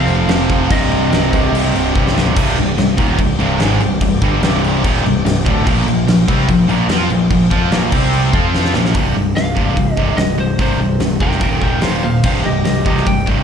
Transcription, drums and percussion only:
0.08 crash medium
0.29 snare loud
0.29 crash medium
0.50 kick medium
0.50 crash medium
0.70 kick loud
0.70 crash loud
0.92 crash medium
1.12 snare loud
1.12 crash medium
1.33 kick loud
1.33 crash medium
1.55 crash medium
1.75 crash medium
1.96 kick medium
2.07 snare medium
2.18 snare loud
2.26 floor tom medium
2.37 kick loud
2.37 crash loud
2.37 crash medium
2.58 crash medium
2.78 snare loud
2.78 crash medium
2.98 kick loud
2.98 crash medium
3.19 kick loud
3.19 crash medium
3.40 crash medium
3.60 snare loud
3.60 crash medium
3.80 crash medium
4.01 kick loud
4.01 crash medium
4.22 kick loud
4.22 crash medium
4.43 snare loud
4.43 crash medium
4.64 crash medium
4.84 kick loud
4.84 crash medium
5.06 crash medium
5.26 snare loud
5.26 crash medium
5.46 kick loud
5.46 crash medium
5.67 kick loud
5.67 crash loud
5.88 crash medium
6.08 snare loud
6.08 crash medium
6.28 kick loud
6.28 crash medium
6.48 kick loud
6.48 crash medium
6.69 crash medium
6.89 snare loud
6.89 crash medium
7.10 crash medium
7.30 kick loud
7.30 crash medium
7.51 kick loud
7.51 crash medium
7.72 snare loud
7.72 crash medium
7.92 kick loud
7.92 crash loud
8.13 crash medium
8.33 kick loud
8.33 crash medium
8.54 snare medium
8.65 snare medium
8.74 snare medium
8.85 snare medium
8.94 kick loud
8.94 open hi-hat medium
9.36 snare medium
9.36 open hi-hat soft
9.57 kick medium
9.77 kick medium
9.77 open hi-hat soft
9.97 kick medium
10.17 snare loud
10.17 open hi-hat medium
10.59 kick loud
10.59 open hi-hat medium
11.00 snare medium
11.00 open hi-hat medium
11.20 kick medium
11.31 snare soft
11.41 kick loud
11.41 open hi-hat medium
11.61 kick medium
11.81 snare loud
11.81 open hi-hat medium
12.23 kick loud
12.23 crash loud
12.65 snare loud
12.65 open hi-hat medium
12.86 kick medium
12.97 snare soft
13.06 kick loud
13.06 open hi-hat medium
13.27 kick medium

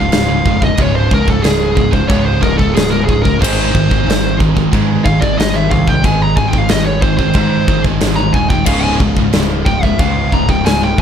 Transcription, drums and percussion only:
0.12 snare loud
0.12 china medium
0.46 kick medium
0.62 kick medium
0.77 kick loud
0.77 china medium
1.11 kick medium
1.28 kick medium
1.44 snare loud
1.44 china medium
1.77 kick loud
1.93 kick medium
2.10 kick loud
2.10 china medium
2.43 kick medium
2.59 kick medium
2.76 snare loud
2.76 china medium
3.09 kick medium
3.25 kick medium
3.42 kick loud
3.42 crash loud
3.42 china medium
3.75 kick loud
3.91 kick medium
4.10 snare loud
4.10 china medium
4.40 kick loud
4.57 kick medium
4.73 kick loud
4.73 china medium
5.06 kick medium
5.22 kick medium
5.40 snare loud
5.40 china medium
5.71 kick medium
5.88 kick medium
6.04 kick loud
6.04 china medium
6.37 kick medium
6.53 kick loud
6.69 snare loud
6.69 china medium
7.02 kick medium
7.19 kick medium
7.33 kick loud
7.33 china medium
7.68 kick medium
7.84 kick medium
8.00 snare loud
8.00 china medium
8.34 kick medium
8.50 kick medium
8.66 kick loud
8.66 crash loud
8.66 china medium
9.00 kick medium
9.17 kick medium
9.33 snare loud
9.33 china medium
9.66 kick loud
9.83 kick medium
9.99 kick loud
9.99 china medium
10.32 kick medium
10.49 kick medium
10.66 snare loud
10.66 china medium
10.98 kick medium

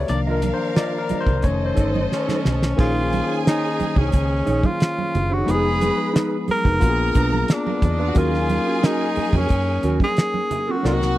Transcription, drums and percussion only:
0.08 closed hi-hat medium
0.08 muted conga soft
0.42 closed hi-hat medium
0.42 high conga medium
0.76 snare loud
0.76 closed hi-hat medium
0.76 muted conga soft
1.09 closed hi-hat medium
1.09 muted conga soft
1.09 high conga medium
1.27 kick medium
1.27 low conga medium
1.42 kick medium
1.42 closed hi-hat medium
1.77 kick medium
1.77 closed hi-hat medium
1.95 high conga medium
2.12 snare medium
2.12 muted conga soft
2.29 snare medium
2.29 high conga medium
2.45 snare medium
2.45 muted conga soft
2.45 low conga medium
2.63 snare medium
2.79 kick loud
2.79 crash medium
3.13 closed hi-hat medium
3.13 muted conga soft
3.13 high conga medium
3.47 snare loud
3.47 closed hi-hat medium
3.47 muted conga soft
3.80 closed hi-hat medium
3.80 muted conga soft
3.80 high conga medium
3.96 kick medium
3.96 low conga medium
4.12 kick loud
4.12 closed hi-hat medium
4.12 muted conga soft
4.47 closed hi-hat medium
4.47 muted conga soft
4.63 kick medium
4.63 high conga medium
4.80 snare loud
4.80 closed hi-hat medium
4.98 high conga medium
5.15 closed hi-hat medium
5.15 muted conga soft
5.15 low conga medium
5.48 closed hi-hat medium
5.48 muted conga soft
5.81 closed hi-hat medium
5.81 high conga medium
6.16 snare loud
6.16 closed hi-hat medium
6.16 muted conga soft
6.48 open hi-hat medium
6.48 muted conga soft
6.48 high conga medium
6.65 kick medium
6.65 low conga medium
6.81 kick loud
6.81 closed hi-hat medium
6.81 muted conga soft
7.14 kick medium
7.14 closed hi-hat medium
7.14 muted conga soft
7.33 high conga medium
7.48 snare loud
7.48 closed hi-hat medium
7.48 muted conga soft
7.67 high conga medium
7.82 kick medium
7.82 closed hi-hat medium
7.82 muted conga soft
7.82 low conga medium
8.15 kick loud
8.15 closed hi-hat medium
8.15 muted conga soft
8.34 snare soft
8.49 closed hi-hat medium
8.49 high conga medium
8.83 snare loud
8.83 closed hi-hat medium
9.16 open hi-hat soft
9.16 high conga medium
9.33 kick medium
9.33 low conga medium
9.49 kick medium
9.49 closed hi-hat medium
9.49 muted conga soft
9.83 closed hi-hat medium
10.00 kick medium
10.00 high conga medium
10.17 snare loud
10.17 closed hi-hat medium
10.34 high conga medium
10.51 closed hi-hat medium
10.51 low conga medium
10.84 snare medium
10.84 muted conga soft
11.02 snare soft

